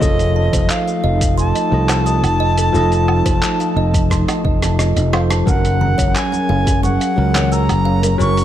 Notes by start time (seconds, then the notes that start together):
Already playing: D#5
0.00 F1 F3 A3 D#4 F4 A4 D#5, kick, shaker
0.19 closed hi-hat, shaker
0.36 A5
0.53 F1 C5, kick, closed hi-hat, shaker
0.70 F5, clap, shaker
0.88 F5, shaker
1.04 F1 D#5
1.21 kick, closed hi-hat, shaker
1.38 A5 C6, shaker
1.55 D#5, closed hi-hat, shaker
1.70 C2 F3 F4 A4 D#5
1.89 C5, clap, closed hi-hat, low woodblock, shaker
2.06 D#6, shaker
2.23 F1, closed hi-hat, low woodblock, shaker
2.40 D#5
2.58 A4, closed hi-hat, shaker
2.73 F1 F3 F4 A4 D#5, shaker
2.92 closed hi-hat, shaker
3.08 A5, low woodblock
3.26 F1 C5, kick, closed hi-hat, shaker
3.43 clap, shaker
3.60 F5, closed hi-hat, shaker
3.76 F1 D#5
3.94 kick, closed hi-hat, shaker
4.10 C6, kick, cross-stick, shaker
4.28 D#5, cross-stick, closed hi-hat, low woodblock, shaker
4.45 F1 D#5, kick
4.62 A5, cross-stick, closed hi-hat, shaker
4.79 D#5, cross-stick, shaker
4.96 F1 D#5, closed hi-hat, shaker
5.12 F3 F4 A4 C5 F5 C6, cross-stick, low woodblock
5.30 A5, cross-stick, closed hi-hat, shaker
5.46 F#1 F#3 C#4 G#4 A#4 F#5, kick, shaker
5.65 closed hi-hat, shaker
5.81 A#5, high conga, low conga
5.98 F#1 C#5, kick, closed hi-hat, shaker
6.16 G#5, clap, shaker
6.32 F#5, high conga, shaker
6.49 F#1 F5, high bongo
6.67 kick, closed hi-hat, high bongo, shaker
6.83 F#5 C#6, high conga, shaker
7.01 F5, closed hi-hat, shaker
7.16 C#2 F#3 C#4 A#4
7.35 C#5, clap, closed hi-hat, high conga, low conga, low woodblock, shaker
7.52 A#5 E6, shaker
7.69 F#1, closed hi-hat, low woodblock, shaker
7.85 F5
8.03 A#4, closed hi-hat, high bongo, high conga, shaker
8.18 F#1 F#3 C#4 A#4 C#6, shaker
8.37 closed hi-hat, shaker